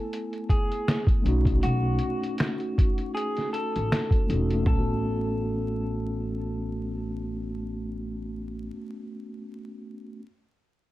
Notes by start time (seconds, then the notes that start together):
Already playing: A3 B3 E4 A4 G#5
0.13 closed hi-hat
0.33 closed hi-hat
0.49 G#4, kick, closed hi-hat
0.72 closed hi-hat
0.88 finger snap, snare, closed hi-hat
1.07 kick, closed hi-hat
1.22 B1 A3 C#4 D#4, closed hi-hat
1.28 F#4
1.45 kick, closed hi-hat
1.63 B1 F#4, closed hi-hat
1.99 closed hi-hat
2.23 closed hi-hat
2.38 finger snap, snare, closed hi-hat
2.60 closed hi-hat
2.78 kick, closed hi-hat
2.98 closed hi-hat
3.15 G#4, closed hi-hat
3.37 snare, closed hi-hat
3.53 A4, closed hi-hat
3.76 A1, closed hi-hat
3.92 finger snap, snare, closed hi-hat
4.11 kick, closed hi-hat
4.27 E1 A3 C#4, closed hi-hat
4.31 D#4 F#4
4.50 A3, closed hi-hat
4.63 B3, kick, floor tom
4.67 A1 C#4 A4
4.79 F#4